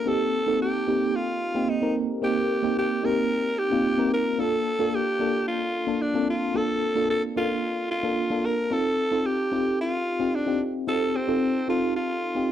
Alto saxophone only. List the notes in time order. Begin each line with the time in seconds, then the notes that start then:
0.08 A4
0.62 G4
1.16 F4
1.69 D#4
2.24 G4
2.78 G4
3.05 A#4
3.59 G4
4.13 A#4
4.40 A4
4.95 G4
5.48 F4
6.01 D4
6.30 F4
6.56 A4
7.10 A4
7.37 F4
7.91 F4
8.45 A#4
8.73 A4
9.26 G4
9.81 F4
10.35 D4
10.88 A4
11.16 C4
11.69 F4
11.96 F4